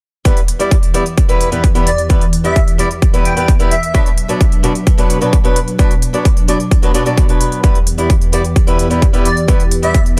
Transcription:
0.25 analog synth pad E2 E3 G4 B4, steel-string acoustic guitar G3 B3 E4 B4, kick, closed hi-hat
0.37 closed hi-hat
0.48 closed hi-hat
0.59 steel-string acoustic guitar G3 B3 E4 D5, closed hi-hat
0.71 kick, closed hi-hat
0.83 closed hi-hat
0.94 steel-string acoustic guitar G3 B3 E4 D5, closed hi-hat
1.06 closed hi-hat
1.18 kick, closed hi-hat
1.28 steel-string acoustic guitar G3 B3 E4 B4, closed hi-hat
1.41 closed hi-hat
1.52 steel-string acoustic guitar G3 B3 E4 B4, closed hi-hat
1.64 kick, closed hi-hat
1.75 steel-string acoustic guitar G3 B3 E4 B4, closed hi-hat
1.87 digital synth lead D5, closed hi-hat
1.98 closed hi-hat
2.09 steel-string acoustic guitar G3 B3 E4 B4, kick, closed hi-hat
2.21 closed hi-hat
2.33 closed hi-hat
2.44 steel-string acoustic guitar G3 B3 E4 D5, digital synth lead E5, closed hi-hat
2.56 kick, closed hi-hat
2.68 closed hi-hat
2.78 steel-string acoustic guitar G3 B3 E4 D5, closed hi-hat
2.91 closed hi-hat
3.02 kick, closed hi-hat
3.13 steel-string acoustic guitar G3 B3 E4 B4, closed hi-hat
3.25 digital synth lead G5, closed hi-hat
3.36 steel-string acoustic guitar G3 B3 E4 B4, digital synth lead G5, closed hi-hat
3.48 kick, closed hi-hat
3.59 steel-string acoustic guitar G3 B3 E4 B4, closed hi-hat
3.71 digital synth lead E5, closed hi-hat
3.83 closed hi-hat
3.94 steel-string acoustic guitar B2 F#3 B3 D4 B4, analog synth pad B2 F#3 D4, kick, closed hi-hat
4.06 closed hi-hat
4.18 closed hi-hat
4.28 steel-string acoustic guitar B2 F#3 B3 D4 D5, closed hi-hat
4.41 kick, closed hi-hat
4.52 closed hi-hat
4.63 steel-string acoustic guitar B2 F#3 B3 D4 D5, closed hi-hat
4.75 closed hi-hat
4.87 kick, closed hi-hat
4.98 steel-string acoustic guitar B2 F#3 B3 D4 B4, closed hi-hat
5.10 closed hi-hat
5.21 steel-string acoustic guitar B2 F#3 B3 D4 B4, closed hi-hat
5.33 kick, closed hi-hat
5.44 steel-string acoustic guitar B2 F#3 B3 D4 B4, closed hi-hat
5.56 closed hi-hat
5.68 closed hi-hat
5.78 steel-string acoustic guitar B2 F#3 B3 D4 B4, kick, closed hi-hat
5.91 closed hi-hat
6.02 closed hi-hat
6.13 steel-string acoustic guitar B2 F#3 B3 D4 D5, closed hi-hat
6.25 kick, closed hi-hat
6.37 closed hi-hat
6.48 steel-string acoustic guitar B2 F#3 B3 D4 D5, closed hi-hat
6.60 closed hi-hat
6.71 kick, closed hi-hat
6.82 steel-string acoustic guitar B2 F#3 B3 D4 B4, closed hi-hat
6.94 steel-string acoustic guitar B2 F#3 B3 D4 D5, closed hi-hat
7.05 steel-string acoustic guitar B2 F#3 B3 D4 D5, closed hi-hat
7.17 kick, closed hi-hat
7.28 steel-string acoustic guitar B2 F#3 B3 D4 B4, closed hi-hat
7.41 closed hi-hat
7.52 closed hi-hat
7.63 analog synth pad E2 E3 B3 G4, steel-string acoustic guitar G3 B3 E4 B4, kick, closed hi-hat
7.75 closed hi-hat
7.87 closed hi-hat
7.98 steel-string acoustic guitar G3 B3 E4 D5, closed hi-hat
8.10 kick, closed hi-hat
8.21 closed hi-hat
8.32 steel-string acoustic guitar G3 B3 E4 D5, closed hi-hat
8.44 closed hi-hat
8.56 kick, closed hi-hat
8.67 steel-string acoustic guitar G3 B3 E4 B4, closed hi-hat
8.79 closed hi-hat
8.90 steel-string acoustic guitar G3 B3 E4 B4, closed hi-hat
9.02 kick, closed hi-hat
9.13 steel-string acoustic guitar G3 B3 E4 B4, closed hi-hat
9.25 digital synth lead D5, closed hi-hat
9.37 closed hi-hat
9.48 steel-string acoustic guitar G3 B3 E4 B4, kick, closed hi-hat
9.60 closed hi-hat
9.71 closed hi-hat
9.82 steel-string acoustic guitar G3 B3 E4 D5, digital synth lead E5, closed hi-hat
9.94 kick, closed hi-hat
10.06 closed hi-hat

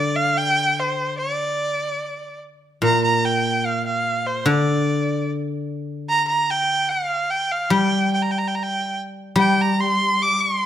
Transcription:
Already playing: guzheng D3 G3, erhu D5
0.16 erhu F5
0.37 erhu G5
0.79 erhu C5
1.18 erhu D5
2.82 guzheng A#2, erhu A#5
3.04 erhu A#5
3.25 erhu G5
3.66 erhu F5
3.86 erhu F5
4.26 erhu C5
4.46 guzheng D3, erhu D5
6.09 erhu A#5
6.28 erhu A#5
6.50 erhu G5
6.90 erhu F5
7.31 erhu G5
7.51 erhu F5
7.70 guzheng G3, erhu G5
8.14 erhu G5
8.22 erhu A#5
8.31 erhu G5
8.38 erhu A#5
8.48 erhu G5
8.55 erhu A#5
8.63 erhu G5
9.36 guzheng G3, erhu G5
9.61 erhu A#5
9.80 erhu C6
10.22 erhu D6
10.40 erhu C6

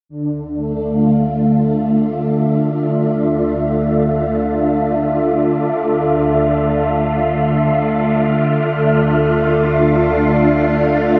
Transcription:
0.09 analog synth bass D2, string machine D3, synth texture E5
0.55 string machine A3
0.60 string machine D4
0.88 string machine F4
2.95 analog synth bass D2
5.81 analog synth bass D2
8.66 analog synth bass D2

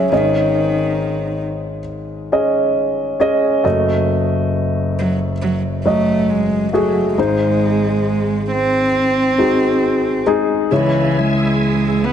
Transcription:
Already playing: cello F#3, grand piano C#4 G#4 E5
0.12 grand piano G#1 G#2 C#4 G#4 D#5, cello D#3
2.32 grand piano C#4 G#4 D#5
3.20 grand piano C#4 G#4 D#5
3.64 grand piano F#1 F#2 A3 F#4 D#5
4.99 cello F#3
5.42 cello F#3
5.85 grand piano F#3 F#4 D#5, cello A3
6.30 cello G#3
6.73 cello F#3, grand piano A3 F#4 G#4
7.17 grand piano G#1 G#2 G#3 D#4 C5, cello G#3
8.52 cello C4
9.38 grand piano G#3 D#4 F#4
10.26 grand piano G#3 D#4 G#4
10.71 tonewheel organ C#2 C#3 E3 E4 G#4, grand piano C#2 C#3 G#3 E4 C#5, cello E3
11.19 cello G#3
12.05 cello B3

